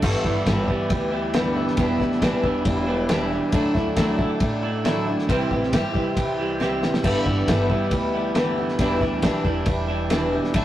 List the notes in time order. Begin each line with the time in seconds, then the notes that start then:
0.02 G1 G2 D3 E3 G3 B3 E4 G4 B4 D5, kick, crash
0.24 G1 E3 G3 B3 E4, kick, snare
0.46 G1 G2 D3 E3 G3 B3 E4, kick, snare, ride bell
0.68 G2 E3 G3 B3 E4, kick
0.90 D2 E3 G3 B3 E4, kick, ride bell
1.11 E3 G3 B3 E4
1.34 G2 D3 E3 G3 B3 E4, snare, ride bell
1.56 E3 G3 B3 E4
1.68 snare
1.77 E1 E2 B2 E3 G3 B3 D4 E4 G4 B4 D5, kick, ride bell
2.00 D2 E3 G3 B3 D4 E4, kick, snare
2.12 snare
2.22 B1 E2 B2 E3 G3 B3 D4 E4, kick, snare, ride bell
2.43 E1 E3 G3 B3 D4 E4, kick
2.65 E1 E3 G3 D4 E4, kick, ride bell
2.87 G3 B3 D4 E4
3.09 E2 B2 E3 G3 B3 D4 E4, snare, ride bell
3.31 E3 G3 D4 E4
3.52 D2 D3 F#3 A3 D4 E4 F#4 A4 D5, kick, ride bell
3.75 D2 A3 D4 E4, kick, snare
3.96 D2 D3 F#3 A3 D4 E4, kick, snare, ride bell
4.19 D3 A3 D4 E4, kick
4.40 A1 F#3 A3 D4 E4, kick, ride bell
4.62 A3 D4 E4
4.85 D3 F#3 A3 D4 E4, snare, ride bell
5.07 A3 D4 E4
5.19 snare
5.29 C2 C3 E3 G3 E4 G4 C5 E5, kick, ride bell
5.51 A1 G3 E4 G4, kick
5.64 snare
5.73 G2 C3 E3 G3 E4 G4, kick, snare, ride bell
5.94 C2 G3 E4 G4, kick
6.15 C2 E3 G3 E4 G4, kick, ride bell
6.38 G3 E4 G4
6.60 C3 E3 G3 E4 G4, snare
6.81 G3 E4 G4, snare
6.94 snare
7.03 G1 G2 D3 E3 G3 B3 E4 G4 B4 D5, kick, crash
7.25 G1 E3 G3 B3 E4, kick
7.48 G1 G2 D3 E3 G3 B3 E4, kick, snare, ride bell
7.69 G2 E3 G3 B3 E4, kick
7.91 D2 E3 G3 B3 E4, kick, ride bell
8.14 E3 G3 B3 E4
8.35 G2 D3 E3 G3 B3 E4, snare, ride bell
8.57 E3 G3 B3 E4
8.69 snare
8.79 E1 E2 B2 E3 G3 D4 E4 G4 B4 D5, kick, ride bell
9.01 D2 E3 G3 D4 E4, kick, snare
9.22 B1 E2 B2 E3 G3 D4 E4, kick, snare, ride bell
9.45 E1 E3 G3 D4 E4, kick
9.66 E1 E3 G3 D4 E4, kick, ride bell
9.88 E3 G3 D4 E4
10.10 E2 B2 E3 G3 D4 E4, snare, ride bell
10.32 E3 G3 D4 E4
10.44 snare
10.54 D2 D3 F#3 A3 D4 E4 F#4 A4 D5, kick, ride bell